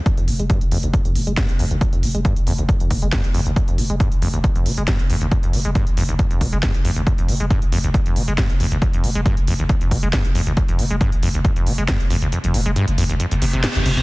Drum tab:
HH |xxoxxxoxxxoxxxox|xxoxxxoxxxoxxxox|xxoxxxoxxxoxxxox|xxoxxxoxxxoxxxox|
SD |------------o---|------------o---|------------o---|------------o---|
BD |o---o---o---o---|o---o---o-o-o---|o---o---o---o---|o---o---o-o-o---|

HH |xxoxxxoxxxoxxxox|xxoxxxoxxxoxxxox|xxoxxxoxxxoxxxox|xxoxxxoxxxoxxxox|
SD |------------o---|------------o---|------------o---|------------o---|
BD |o---o---o---o---|o---o---o-o-o---|o---o---o---o---|----------------|